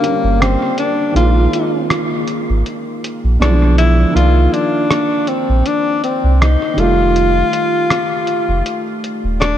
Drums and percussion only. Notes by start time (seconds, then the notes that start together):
0.04 closed hi-hat
0.42 cross-stick, closed hi-hat
0.62 cross-stick
0.78 closed hi-hat
1.16 closed hi-hat
1.53 closed hi-hat
1.90 cross-stick, closed hi-hat
2.28 closed hi-hat
2.66 closed hi-hat
3.04 closed hi-hat
3.42 cross-stick, closed hi-hat
3.62 cross-stick
3.78 closed hi-hat
4.17 closed hi-hat
4.54 closed hi-hat
4.91 cross-stick, closed hi-hat
5.27 closed hi-hat
5.66 closed hi-hat
6.04 closed hi-hat
6.42 cross-stick, closed hi-hat
6.62 cross-stick
6.78 closed hi-hat
7.16 closed hi-hat
7.53 closed hi-hat
7.90 cross-stick, closed hi-hat
8.27 closed hi-hat
8.66 closed hi-hat
9.04 closed hi-hat
9.42 cross-stick, closed hi-hat